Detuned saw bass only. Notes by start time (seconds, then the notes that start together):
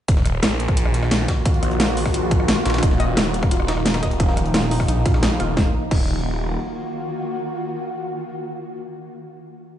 0.08 D#1
0.43 A#1
1.63 A#1
2.66 A#1
2.83 D#1
3.17 D#1
4.03 D#1
4.88 A#1
5.40 D#1
5.57 D#1
5.91 D#1